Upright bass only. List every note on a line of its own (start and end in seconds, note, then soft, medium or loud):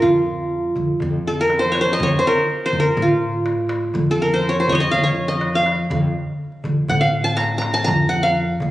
0.03 0.72 F2 medium
0.76 0.99 F2 medium
1.02 1.95 F2 medium
2.00 2.22 F2 loud
2.73 2.95 F2 medium
2.97 3.91 A2 loud
3.95 4.65 F2 medium
4.69 4.91 F2 medium
4.94 5.88 F2 medium
5.91 6.14 F2 medium
6.65 6.88 F2 medium
6.90 7.84 A2 medium
7.88 8.58 F2 loud
8.62 8.71 F2 medium